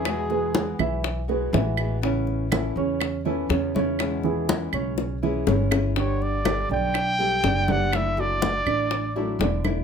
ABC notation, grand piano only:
X:1
M:4/4
L:1/8
Q:1/4=122
K:Emix
V:1 name="Grand piano"
[E,Ee] [G,GB]2 [E,Ee]2 [G,GB] [E,Ee]2 | [C,Cc]2 [E,EA] [C,Cc]2 [E,EA] [C,Cc] [C,Cc]- | [C,Cc] [E,EG]2 [C,Cc]2 [E,EG] [C,Cc]2 | [D,Dd]2 [=G,=GA] [D,Dd]2 [G,GA] [D,Dd] [D,Dd]- |
[D,Dd] [F,FA]2 [D,Dd]2 [F,FA] [D,Dd]2 |]